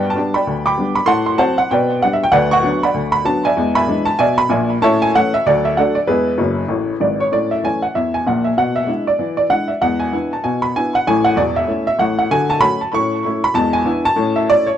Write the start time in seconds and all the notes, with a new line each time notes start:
Already playing: G2 B3 B4 D5 G5
0.10 A5
0.15 G3 B3 D4
0.34 D5 G5 B5
0.47 D2
0.66 G5 B5 D6
0.78 G3 B3 D4
0.95 B5
1.06 A2 F#5 A5 C6
1.26 C6
1.38 F#3 C4 C5 F#5 A5
1.58 F#5
1.71 B2 B4 D5 G5
2.02 G3 B3 D4 F#5
2.13 E5
2.23 G5
2.32 D2 B4 D5 F#5
2.51 F#5 C#6
2.63 F#3 B3 D4
2.83 D5 F#5 B5
2.94 D2
3.12 B5
3.24 F#3 B3 D4 A5
3.45 D5 E5 G#5
3.57 E2 G#3
3.75 E5 G#5 B5
3.88 E3 G#3 D4
4.05 A5
4.19 B2 D5 E5 G#5
4.38 B5
4.49 A#1 A#2 D5 E5 G#5
4.82 A2 C#4 C#5 E5 A5
5.02 G#5
5.15 E3 A3 C#4 F#5
5.34 E5
5.46 D2 F#3 F#4 A4 D5
5.65 E5
5.77 F#3 A3 D4 A4 D5 F#5
5.95 D5
6.07 E2 G#3 E4 G#4 B4
6.38 F#1 F#2
6.68 A1 A2
7.00 G#1 G#2 D5
7.20 C#5
7.32 A2 C#4 D5
7.51 E5
7.63 E3 A3 C#4 G#5
7.82 F#5
7.95 E2 E5
8.14 G#5
8.26 A#1 A#2 F#5
8.44 E5
8.57 B2 F#5
8.76 E5
8.87 G#3 D4 E4
9.07 D5
9.19 E3
9.37 D5
9.49 G#3 D4 E4 F#5
9.68 E5
9.82 E2 G#3 F#5
10.00 G#5
10.13 B3 D4 E4
10.33 A5
10.44 B2 G#5
10.62 B5
10.76 B3 D4 E4 G#5
10.95 F#5
11.07 A1 A2 G#5
11.25 F#5
11.36 E1 E2 D5
11.56 E5
11.67 A3 C#4 E4
11.87 E5
11.99 A1 A2 F#5
12.19 F#5
12.31 D3 F#4 G#5
12.50 A5
12.60 A3 C#4 F#4 B5
12.81 A5
12.93 A2 C#4 C#6
13.25 A3 C#4 E4
13.44 B5
13.54 E2 G#3 A5
13.73 G#5
13.85 B3 D4 E4
14.05 A5
14.16 A2 C#4
14.36 E5
14.49 A3 C#4 E4 D5
14.66 C#5